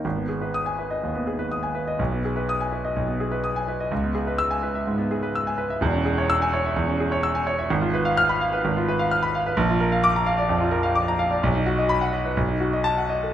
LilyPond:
\new Staff \with { instrumentName = "Grand piano" } { \time 4/4 \key gis \minor \tempo 4 = 127 << { r4 dis'''8 r2 r8 | r4 dis'''8 r2 r8 | r4 e'''8 r2 r8 | r4 e'''8 r2 r8 |
\key ces \lydian r4 f'''8 r2 r8 | r4 d'''8 r2 r8 | r4 b''8 r4. a''8 r8 | } \\ { gis,,16 b16 gis'16 b'8 gis''16 b'16 dis''16 dis,16 b16 gis'16 b'16 dis'''16 gis''16 b'16 dis''16 | b,,16 b16 gis'16 b'8 gis''16 b'16 dis''16 b,,16 b16 gis'16 b'16 dis'''16 gis''16 b'16 dis''16 | cis,16 b16 gis'16 b'8 gis''16 b'16 e''16 gis,16 b16 gis'16 b'16 e'''16 gis''16 b'16 e''16 | <e,, e,>16 cis'16 gis'16 cis''8 gis''16 cis''16 e''16 e,16 cis'16 gis'16 cis''16 e'''16 gis''16 cis''16 e''16 |
aes,,16 f'16 ces''16 f''8 ces'''16 f''16 ces''16 aes,,16 f'16 ces''16 f''16 f'''16 ces'''16 f''16 ces''16 | bes,,16 f'16 bes'16 f''8 bes''16 f''16 d''16 f,16 f'16 bes'16 f''16 d'''16 bes''16 f''16 d''16 | b,,16 dis'16 fis'16 dis''8 fis''16 dis''16 b'16 b,,16 dis'16 fis'16 dis''8 fis''16 dis''16 a'16 | } >> }